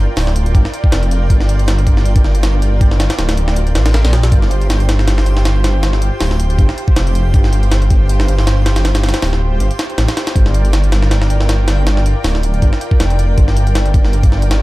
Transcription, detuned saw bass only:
0, 0, Header, 1, 2, 480
1, 0, Start_track
1, 0, Key_signature, -2, "minor"
1, 0, Tempo, 377358
1, 1654, Time_signature, 4, 2, 24, 8
1, 18599, End_track
2, 0, Start_track
2, 0, Title_t, "Detuned saw bass"
2, 0, Program_c, 0, 39
2, 214, Note_on_c, 0, 26, 84
2, 677, Note_off_c, 0, 26, 0
2, 696, Note_on_c, 0, 31, 106
2, 813, Note_off_c, 0, 31, 0
2, 1173, Note_on_c, 0, 29, 102
2, 1636, Note_off_c, 0, 29, 0
2, 1654, Note_on_c, 0, 31, 102
2, 2837, Note_off_c, 0, 31, 0
2, 2853, Note_on_c, 0, 31, 88
2, 3924, Note_off_c, 0, 31, 0
2, 4054, Note_on_c, 0, 26, 84
2, 4776, Note_on_c, 0, 33, 99
2, 4795, Note_off_c, 0, 26, 0
2, 5125, Note_off_c, 0, 33, 0
2, 5148, Note_on_c, 0, 34, 93
2, 5478, Note_off_c, 0, 34, 0
2, 5495, Note_on_c, 0, 31, 102
2, 6677, Note_off_c, 0, 31, 0
2, 6693, Note_on_c, 0, 31, 88
2, 7764, Note_off_c, 0, 31, 0
2, 7897, Note_on_c, 0, 26, 82
2, 8358, Note_off_c, 0, 26, 0
2, 8377, Note_on_c, 0, 31, 104
2, 8494, Note_off_c, 0, 31, 0
2, 8857, Note_on_c, 0, 29, 101
2, 9318, Note_off_c, 0, 29, 0
2, 9337, Note_on_c, 0, 31, 103
2, 10518, Note_off_c, 0, 31, 0
2, 10538, Note_on_c, 0, 31, 88
2, 11606, Note_off_c, 0, 31, 0
2, 11735, Note_on_c, 0, 26, 83
2, 12197, Note_off_c, 0, 26, 0
2, 12215, Note_on_c, 0, 31, 106
2, 12332, Note_off_c, 0, 31, 0
2, 12694, Note_on_c, 0, 33, 98
2, 12812, Note_off_c, 0, 33, 0
2, 13173, Note_on_c, 0, 31, 101
2, 14356, Note_off_c, 0, 31, 0
2, 14373, Note_on_c, 0, 31, 85
2, 15444, Note_off_c, 0, 31, 0
2, 15573, Note_on_c, 0, 26, 84
2, 16037, Note_off_c, 0, 26, 0
2, 16056, Note_on_c, 0, 31, 104
2, 16173, Note_off_c, 0, 31, 0
2, 16530, Note_on_c, 0, 29, 100
2, 16995, Note_off_c, 0, 29, 0
2, 17014, Note_on_c, 0, 31, 105
2, 18197, Note_off_c, 0, 31, 0
2, 18210, Note_on_c, 0, 31, 85
2, 18599, Note_off_c, 0, 31, 0
2, 18599, End_track
0, 0, End_of_file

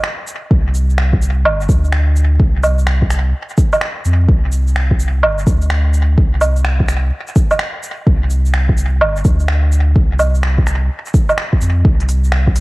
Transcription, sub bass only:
0, 0, Header, 1, 2, 480
1, 0, Start_track
1, 0, Tempo, 472441
1, 517, Time_signature, 4, 2, 24, 8
1, 12805, End_track
2, 0, Start_track
2, 0, Title_t, "Sub bass"
2, 0, Program_c, 0, 38
2, 515, Note_on_c, 0, 36, 91
2, 1473, Note_on_c, 0, 31, 89
2, 1489, Note_off_c, 0, 36, 0
2, 1701, Note_off_c, 0, 31, 0
2, 1713, Note_on_c, 0, 38, 97
2, 2424, Note_off_c, 0, 38, 0
2, 2434, Note_on_c, 0, 36, 93
2, 3384, Note_off_c, 0, 36, 0
2, 4116, Note_on_c, 0, 41, 76
2, 4343, Note_off_c, 0, 41, 0
2, 4352, Note_on_c, 0, 36, 94
2, 5312, Note_on_c, 0, 31, 92
2, 5328, Note_off_c, 0, 36, 0
2, 5541, Note_off_c, 0, 31, 0
2, 5554, Note_on_c, 0, 38, 97
2, 6264, Note_off_c, 0, 38, 0
2, 6274, Note_on_c, 0, 36, 95
2, 7225, Note_off_c, 0, 36, 0
2, 8194, Note_on_c, 0, 36, 93
2, 9152, Note_on_c, 0, 31, 88
2, 9167, Note_off_c, 0, 36, 0
2, 9381, Note_off_c, 0, 31, 0
2, 9395, Note_on_c, 0, 38, 98
2, 10105, Note_off_c, 0, 38, 0
2, 10115, Note_on_c, 0, 36, 93
2, 11065, Note_off_c, 0, 36, 0
2, 11797, Note_on_c, 0, 41, 77
2, 12024, Note_off_c, 0, 41, 0
2, 12038, Note_on_c, 0, 36, 95
2, 12805, Note_off_c, 0, 36, 0
2, 12805, End_track
0, 0, End_of_file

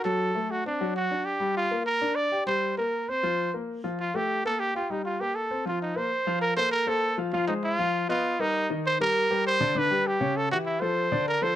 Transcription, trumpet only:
0, 0, Header, 1, 2, 480
1, 0, Start_track
1, 0, Key_signature, -2, "major"
1, 0, Tempo, 303490
1, 62, Time_signature, 4, 2, 24, 8
1, 18277, End_track
2, 0, Start_track
2, 0, Title_t, "Trumpet"
2, 0, Program_c, 0, 56
2, 69, Note_on_c, 0, 69, 82
2, 805, Note_on_c, 0, 66, 80
2, 828, Note_off_c, 0, 69, 0
2, 1033, Note_off_c, 0, 66, 0
2, 1051, Note_on_c, 0, 62, 70
2, 1484, Note_off_c, 0, 62, 0
2, 1516, Note_on_c, 0, 66, 79
2, 1981, Note_on_c, 0, 67, 79
2, 2005, Note_off_c, 0, 66, 0
2, 2462, Note_off_c, 0, 67, 0
2, 2484, Note_on_c, 0, 65, 89
2, 2920, Note_off_c, 0, 65, 0
2, 2942, Note_on_c, 0, 70, 95
2, 3407, Note_on_c, 0, 74, 94
2, 3431, Note_off_c, 0, 70, 0
2, 3895, Note_off_c, 0, 74, 0
2, 3901, Note_on_c, 0, 72, 85
2, 4348, Note_off_c, 0, 72, 0
2, 4388, Note_on_c, 0, 70, 81
2, 4888, Note_on_c, 0, 72, 95
2, 4912, Note_off_c, 0, 70, 0
2, 5596, Note_off_c, 0, 72, 0
2, 6321, Note_on_c, 0, 65, 86
2, 6576, Note_on_c, 0, 67, 91
2, 6599, Note_off_c, 0, 65, 0
2, 7040, Note_off_c, 0, 67, 0
2, 7050, Note_on_c, 0, 69, 84
2, 7270, Note_on_c, 0, 67, 92
2, 7293, Note_off_c, 0, 69, 0
2, 7507, Note_off_c, 0, 67, 0
2, 7530, Note_on_c, 0, 65, 75
2, 7761, Note_on_c, 0, 63, 68
2, 7785, Note_off_c, 0, 65, 0
2, 7983, Note_off_c, 0, 63, 0
2, 7992, Note_on_c, 0, 65, 80
2, 8230, Note_on_c, 0, 67, 83
2, 8254, Note_off_c, 0, 65, 0
2, 8467, Note_on_c, 0, 69, 79
2, 8491, Note_off_c, 0, 67, 0
2, 8947, Note_off_c, 0, 69, 0
2, 8979, Note_on_c, 0, 65, 79
2, 9187, Note_off_c, 0, 65, 0
2, 9204, Note_on_c, 0, 63, 76
2, 9439, Note_on_c, 0, 72, 90
2, 9463, Note_off_c, 0, 63, 0
2, 10137, Note_off_c, 0, 72, 0
2, 10146, Note_on_c, 0, 70, 97
2, 10369, Note_off_c, 0, 70, 0
2, 10385, Note_on_c, 0, 72, 103
2, 10609, Note_off_c, 0, 72, 0
2, 10620, Note_on_c, 0, 70, 96
2, 10891, Note_on_c, 0, 69, 93
2, 10915, Note_off_c, 0, 70, 0
2, 11358, Note_off_c, 0, 69, 0
2, 11588, Note_on_c, 0, 65, 87
2, 11810, Note_off_c, 0, 65, 0
2, 11823, Note_on_c, 0, 63, 70
2, 11932, Note_off_c, 0, 63, 0
2, 12081, Note_on_c, 0, 65, 101
2, 12743, Note_off_c, 0, 65, 0
2, 12817, Note_on_c, 0, 65, 84
2, 13292, Note_on_c, 0, 63, 91
2, 13315, Note_off_c, 0, 65, 0
2, 13758, Note_off_c, 0, 63, 0
2, 14020, Note_on_c, 0, 72, 104
2, 14226, Note_off_c, 0, 72, 0
2, 14258, Note_on_c, 0, 70, 99
2, 14912, Note_off_c, 0, 70, 0
2, 14977, Note_on_c, 0, 72, 98
2, 15470, Note_on_c, 0, 71, 95
2, 15494, Note_off_c, 0, 72, 0
2, 15928, Note_on_c, 0, 67, 84
2, 15951, Note_off_c, 0, 71, 0
2, 16394, Note_on_c, 0, 69, 89
2, 16417, Note_off_c, 0, 67, 0
2, 16621, Note_off_c, 0, 69, 0
2, 16631, Note_on_c, 0, 66, 83
2, 16737, Note_off_c, 0, 66, 0
2, 16855, Note_on_c, 0, 64, 80
2, 17097, Note_on_c, 0, 72, 92
2, 17121, Note_off_c, 0, 64, 0
2, 17821, Note_off_c, 0, 72, 0
2, 17842, Note_on_c, 0, 70, 90
2, 18075, Note_on_c, 0, 72, 87
2, 18098, Note_off_c, 0, 70, 0
2, 18277, Note_off_c, 0, 72, 0
2, 18277, End_track
0, 0, End_of_file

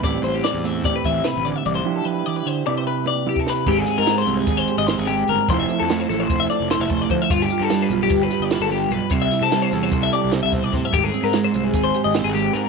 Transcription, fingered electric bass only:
0, 0, Header, 1, 2, 480
1, 0, Start_track
1, 0, Tempo, 403497
1, 46, Time_signature, 9, 3, 24, 8
1, 15095, End_track
2, 0, Start_track
2, 0, Title_t, "Fingered electric bass"
2, 0, Program_c, 0, 33
2, 44, Note_on_c, 0, 33, 94
2, 234, Note_off_c, 0, 33, 0
2, 255, Note_on_c, 0, 33, 80
2, 456, Note_off_c, 0, 33, 0
2, 635, Note_on_c, 0, 40, 74
2, 1002, Note_on_c, 0, 33, 80
2, 1020, Note_off_c, 0, 40, 0
2, 1099, Note_off_c, 0, 33, 0
2, 1240, Note_on_c, 0, 33, 82
2, 1432, Note_off_c, 0, 33, 0
2, 1618, Note_on_c, 0, 33, 75
2, 1803, Note_off_c, 0, 33, 0
2, 1967, Note_on_c, 0, 36, 85
2, 2156, Note_off_c, 0, 36, 0
2, 4365, Note_on_c, 0, 32, 81
2, 4557, Note_off_c, 0, 32, 0
2, 4739, Note_on_c, 0, 44, 84
2, 5020, Note_off_c, 0, 44, 0
2, 5081, Note_on_c, 0, 36, 86
2, 5275, Note_off_c, 0, 36, 0
2, 5321, Note_on_c, 0, 32, 92
2, 5515, Note_off_c, 0, 32, 0
2, 5678, Note_on_c, 0, 32, 78
2, 5873, Note_off_c, 0, 32, 0
2, 5929, Note_on_c, 0, 32, 96
2, 6214, Note_off_c, 0, 32, 0
2, 6287, Note_on_c, 0, 31, 89
2, 6384, Note_off_c, 0, 31, 0
2, 6522, Note_on_c, 0, 29, 85
2, 6716, Note_off_c, 0, 29, 0
2, 6910, Note_on_c, 0, 41, 85
2, 7187, Note_off_c, 0, 41, 0
2, 7253, Note_on_c, 0, 33, 87
2, 7443, Note_off_c, 0, 33, 0
2, 7490, Note_on_c, 0, 29, 91
2, 7681, Note_off_c, 0, 29, 0
2, 7853, Note_on_c, 0, 29, 82
2, 8042, Note_off_c, 0, 29, 0
2, 8084, Note_on_c, 0, 29, 96
2, 8371, Note_off_c, 0, 29, 0
2, 8446, Note_on_c, 0, 38, 88
2, 8544, Note_off_c, 0, 38, 0
2, 8687, Note_on_c, 0, 31, 87
2, 8879, Note_off_c, 0, 31, 0
2, 9045, Note_on_c, 0, 43, 82
2, 9332, Note_off_c, 0, 43, 0
2, 9396, Note_on_c, 0, 35, 86
2, 9592, Note_off_c, 0, 35, 0
2, 9640, Note_on_c, 0, 31, 98
2, 9834, Note_off_c, 0, 31, 0
2, 9993, Note_on_c, 0, 31, 83
2, 10190, Note_off_c, 0, 31, 0
2, 10235, Note_on_c, 0, 31, 92
2, 10525, Note_off_c, 0, 31, 0
2, 10581, Note_on_c, 0, 35, 87
2, 10688, Note_off_c, 0, 35, 0
2, 10836, Note_on_c, 0, 36, 89
2, 11031, Note_off_c, 0, 36, 0
2, 11196, Note_on_c, 0, 48, 81
2, 11485, Note_off_c, 0, 48, 0
2, 11564, Note_on_c, 0, 40, 83
2, 11755, Note_off_c, 0, 40, 0
2, 11802, Note_on_c, 0, 36, 92
2, 11994, Note_off_c, 0, 36, 0
2, 12184, Note_on_c, 0, 36, 78
2, 12367, Note_off_c, 0, 36, 0
2, 12426, Note_on_c, 0, 36, 85
2, 12702, Note_off_c, 0, 36, 0
2, 12753, Note_on_c, 0, 48, 87
2, 12854, Note_off_c, 0, 48, 0
2, 13003, Note_on_c, 0, 32, 91
2, 13193, Note_off_c, 0, 32, 0
2, 13363, Note_on_c, 0, 44, 83
2, 13647, Note_off_c, 0, 44, 0
2, 13734, Note_on_c, 0, 36, 84
2, 13919, Note_off_c, 0, 36, 0
2, 13963, Note_on_c, 0, 32, 91
2, 14152, Note_off_c, 0, 32, 0
2, 14339, Note_on_c, 0, 32, 85
2, 14521, Note_off_c, 0, 32, 0
2, 14567, Note_on_c, 0, 32, 93
2, 14848, Note_off_c, 0, 32, 0
2, 14923, Note_on_c, 0, 44, 88
2, 15017, Note_off_c, 0, 44, 0
2, 15095, End_track
0, 0, End_of_file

